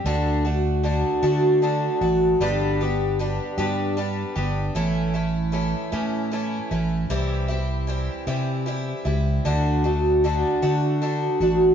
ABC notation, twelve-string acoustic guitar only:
X:1
M:6/8
L:1/8
Q:3/8=51
K:D
V:1 name="Twelve-string acoustic guitar"
[D,A,DF] [A,DF] [D,A,DF] [D,A,DF] [D,A,DF] [A,DF] | [G,,D,G,B,DG] [G,B,DG] [G,B,DG] [G,,D,G,B,DG] [G,B,DG] [G,B,DG] | [A,,E,A,CE] [A,CE] [E,A,CE] [A,,E,A,CE] [E,A,CE] [A,CE] | [=C,E,G,=CE] [G,CE] [E,G,CE] [C,E,G,CE] [E,G,CE] [G,CE] |
[D,A,DF] [A,DF] [D,A,DF] [D,A,DF] [D,A,DF] [A,DF] |]